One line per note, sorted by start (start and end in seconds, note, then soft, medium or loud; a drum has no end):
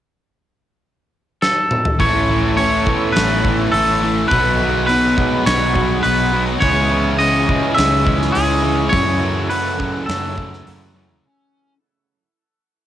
1.42 2.00 A4 medium
1.42 snare medium
1.71 mid tom medium
1.85 floor tom loud
2.00 3.02 A1 medium
2.00 2.28 A2 medium
2.00 2.29 E3 medium
2.00 2.29 A3 loud
2.00 4.32 C#4 medium
2.00 4.29 A4 medium
2.00 4.32 A4 medium
2.00 2.56 C#5 medium
2.00 4.29 E5 medium
2.00 6.59 B5 medium
2.00 4.29 C#6 medium
2.00 kick loud
2.00 open hi-hat medium
2.29 2.58 A2 medium
2.29 2.58 E3 medium
2.29 3.45 E3 medium
2.29 2.58 A3 medium
2.57 2.86 A2 medium
2.57 2.88 E3 medium
2.57 2.88 A3 medium
2.57 3.17 C#4 medium
2.57 3.11 C#5 medium
2.57 open hi-hat medium
2.87 3.15 A2 medium
2.87 3.15 E3 medium
2.87 3.16 A3 loud
2.87 4.32 B3 medium
2.87 kick medium
3.12 3.67 A1 medium
3.12 3.45 A2 medium
3.12 3.45 E3 medium
3.12 3.71 B4 medium
3.12 open hi-hat medium
3.17 3.46 A3 loud
3.17 4.33 C#4 medium
3.17 snare loud
3.45 3.73 A2 medium
3.45 3.74 E3 medium
3.45 3.73 E3 medium
3.45 3.74 A3 medium
3.45 kick medium
3.72 4.24 A1 medium
3.72 4.02 A2 medium
3.72 4.03 E3 medium
3.72 4.04 A3 medium
3.72 4.28 A4 medium
3.72 open hi-hat medium
4.00 4.30 A2 medium
4.00 4.30 E3 medium
4.00 4.32 E3 medium
4.00 4.29 A3 medium
4.05 4.31 A3 medium
4.28 5.33 B1 medium
4.28 4.60 B2 medium
4.28 4.85 B4 medium
4.28 kick loud
4.28 open hi-hat medium
4.32 4.61 F#3 medium
4.32 4.61 B3 medium
4.32 6.63 D#4 medium
4.32 6.64 F#4 medium
4.32 8.90 G#4 medium
4.32 6.61 F#5 medium
4.32 8.91 D#6 medium
4.61 4.87 B2 medium
4.61 5.75 F#3 medium
4.61 4.88 F#3 medium
4.61 4.88 B3 medium
4.87 5.16 B2 loud
4.87 5.17 F#3 medium
4.87 5.17 B3 loud
4.87 5.46 B4 medium
4.87 open hi-hat soft
4.91 5.46 D#4 medium
5.17 5.44 B2 medium
5.17 5.45 F#3 medium
5.17 6.63 G#3 medium
5.17 5.45 B3 loud
5.17 kick medium
5.45 5.98 B1 loud
5.45 5.73 B2 medium
5.45 5.74 F#3 medium
5.45 5.75 B3 loud
5.45 6.63 D#4 medium
5.45 6.02 C#5 medium
5.45 snare loud
5.45 open hi-hat medium
5.75 6.03 B2 medium
5.75 6.03 F#3 medium
5.75 6.04 F#3 medium
5.75 6.03 B3 medium
5.75 kick medium
6.03 6.56 B1 medium
6.03 6.32 B2 medium
6.03 6.32 F#3 medium
6.03 6.32 B3 medium
6.03 6.44 B4 medium
6.03 open hi-hat medium
6.33 6.60 B2 medium
6.33 6.61 F#3 medium
6.33 6.62 F#3 medium
6.33 6.61 B3 medium
6.60 7.64 C#2 loud
6.60 6.90 C#3 medium
6.60 8.94 E3 medium
6.60 6.91 E3 medium
6.60 6.90 G#3 medium
6.60 6.92 C#4 loud
6.60 7.18 C#5 loud
6.60 kick loud
6.60 open hi-hat medium
6.65 8.96 E4 medium
6.65 8.93 E4 medium
6.65 11.23 C#6 medium
6.91 7.19 C#3 medium
6.91 8.07 E3 medium
6.91 7.20 G#3 medium
6.91 7.21 C#4 medium
7.18 7.47 C#3 medium
7.18 7.48 G#3 medium
7.18 7.49 C#4 loud
7.18 7.74 D#5 medium
7.18 open hi-hat medium
7.48 7.75 C#3 medium
7.48 8.94 G#3 medium
7.48 7.76 G#3 medium
7.48 7.77 C#4 medium
7.48 kick medium
7.75 8.29 C#2 loud
7.75 8.04 C#3 medium
7.75 8.05 G#3 medium
7.75 8.06 C#4 loud
7.75 8.36 E5 medium
7.75 snare loud
7.75 open hi-hat medium
8.05 8.33 C#3 medium
8.05 8.35 E3 medium
8.05 8.34 G#3 medium
8.05 8.35 C#4 loud
8.05 kick medium
8.22 snare soft
8.32 8.61 C#3 medium
8.32 8.64 E3 medium
8.32 8.62 G#3 medium
8.32 8.63 C#4 medium
8.32 8.94 G#4 medium
8.32 open hi-hat medium
8.36 8.87 C#2 medium
8.62 8.90 C#3 medium
8.62 8.93 E3 medium
8.62 8.91 G#3 medium
8.62 11.74 C#4 medium
8.89 9.18 F#2 medium
8.89 9.95 F#2 medium
8.89 9.19 C#3 medium
8.89 9.22 E3 medium
8.89 9.19 F#3 loud
8.89 9.51 C#5 medium
8.89 11.22 E6 medium
8.89 kick loud
8.89 open hi-hat medium
8.94 11.26 A3 medium
8.94 11.27 C#4 medium
8.94 11.27 F#4 medium
8.94 11.23 A4 medium
8.94 11.23 F#5 medium
9.20 9.49 F#2 medium
9.20 9.49 C#3 medium
9.20 10.38 E3 medium
9.20 9.50 F#3 medium
9.50 9.78 F#2 medium
9.50 9.78 C#3 medium
9.50 9.78 F#3 medium
9.50 10.09 C#4 medium
9.50 10.06 B4 medium
9.50 open hi-hat medium
9.79 10.07 F#2 medium
9.79 10.08 C#3 loud
9.79 10.08 F#3 medium
9.79 11.26 A3 medium
9.79 kick medium
10.06 10.36 F#2 medium
10.06 10.60 F#2 loud
10.06 10.36 C#3 medium
10.06 10.37 F#3 loud
10.06 10.91 A4 medium
10.06 snare loud
10.06 open hi-hat medium
10.10 11.26 C#4 medium
10.37 10.66 F#2 medium
10.37 10.66 C#3 medium
10.37 10.66 E3 medium
10.37 10.67 F#3 medium
10.37 kick medium
10.53 snare soft
10.67 10.94 F#2 medium
10.67 11.19 F#2 medium
10.67 10.95 C#3 medium
10.67 10.95 E3 medium
10.67 10.95 F#3 medium
10.67 open hi-hat medium
10.96 11.23 F#2 medium
10.96 11.24 C#3 medium
10.96 11.26 E3 medium
10.96 11.24 F#3 medium